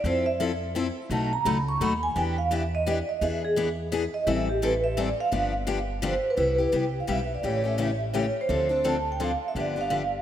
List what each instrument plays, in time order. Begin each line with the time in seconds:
0.04 upright bass F2, steel-string acoustic guitar F3 C4 E4 A4, vibraphone C5
0.26 vibraphone E5
0.40 steel-string acoustic guitar F3 C4 E4 A4
0.75 steel-string acoustic guitar F3 C4 E4 A4
1.10 upright bass B1, steel-string acoustic guitar B2 F#3 A3 D#4 F#4, vibraphone A5
1.33 vibraphone A#5
1.45 upright bass C#2, steel-string acoustic guitar B2 F#3 A3 D#4 F#4, vibraphone B5
1.69 vibraphone C#6
1.80 upright bass D#2, steel-string acoustic guitar B2 F#3 A3 D#4 F#4, vibraphone B5
2.03 vibraphone G#5
2.16 upright bass E2, steel-string acoustic guitar E3 B3 D4 G4, vibraphone G5
2.38 vibraphone F5
2.51 steel-string acoustic guitar E3 B3 D4 G4, vibraphone E5
2.75 vibraphone D#5
2.86 steel-string acoustic guitar E3 B3 D4 G4, vibraphone D5
3.09 vibraphone D#5
3.21 upright bass E2, steel-string acoustic guitar E3 B3 D4 G#4, vibraphone E5
3.45 vibraphone G#4
3.56 steel-string acoustic guitar E3 B3 D4 G#4
3.92 steel-string acoustic guitar E3 B3 D4 G#4
4.14 vibraphone D#5
4.27 upright bass A1, steel-string acoustic guitar E3 G3 C4 E4 A4, vibraphone E5
4.49 vibraphone G4
4.62 steel-string acoustic guitar E3 G3 C4 E4 A4, vibraphone B4
4.84 vibraphone E5
4.97 steel-string acoustic guitar E3 G3 C4 E4 A4, vibraphone D5
5.20 vibraphone F5
5.32 upright bass G1, steel-string acoustic guitar D3 F3 B3 D4 G4
5.67 steel-string acoustic guitar D3 F3 B3 D4 G4
6.02 steel-string acoustic guitar D3 F3 B3 D4 G4
6.07 vibraphone C5
6.30 vibraphone B4
6.37 upright bass C2, steel-string acoustic guitar C3 G3 B3 E4 G4
6.58 steel-string acoustic guitar B3 E4 G4
6.72 upright bass C2, steel-string acoustic guitar C3 G3 B3 E4 G4, vibraphone G5
7.00 vibraphone F5
7.07 upright bass B1, steel-string acoustic guitar C3 G3 B3 E4 G4
7.12 vibraphone E5
7.35 vibraphone D5
7.43 upright bass A1, steel-string acoustic guitar C#3 E3 A3 C#4 G4, vibraphone C#5
7.64 steel-string acoustic guitar A3 C#4 G4
7.68 vibraphone E5
7.78 steel-string acoustic guitar C#3 E3 A3 C#4 G4
8.14 steel-string acoustic guitar C#3 E3 A3 C#4 G4, vibraphone C#5
8.41 vibraphone C5
8.49 upright bass D2, steel-string acoustic guitar D3 F3 C4 D4 A4
8.69 steel-string acoustic guitar C4 D4 A4
8.84 steel-string acoustic guitar D3 F3 C4 D4 A4, vibraphone A5
9.12 vibraphone G5
9.20 steel-string acoustic guitar D3 F3 C4 D4 A4, vibraphone F5
9.48 vibraphone E5
9.55 upright bass G1, steel-string acoustic guitar D3 F3 B3 D4 G4
9.60 vibraphone D5
9.76 steel-string acoustic guitar B3 D4 G4
9.81 vibraphone F5
9.90 steel-string acoustic guitar D3 F3 B3 D4 G4